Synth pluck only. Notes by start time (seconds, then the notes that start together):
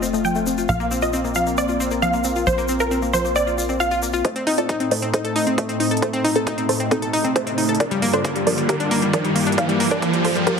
Already playing: D#5
0.25 G5
0.69 F5
1.02 D#5
1.36 F5
1.58 D5
2.02 F5
2.47 C5
2.80 A#4
3.13 C5
3.36 D5
3.80 F5
4.25 C5 D#5
4.58 F4 D5
4.91 C5 D#5
5.14 A4 C5
5.58 C5 D#5
6.02 A4 C5
6.36 C4 A4
6.69 A4 C5
6.91 C4 A4
7.36 A4 C5
7.80 A#4 D5
8.13 A4 C5
8.47 A#4 D5
8.69 G4 A#4
9.14 A#4 D5
9.58 D5 F5
9.91 A#4 D5
10.25 A4 C5
10.47 G4 A#4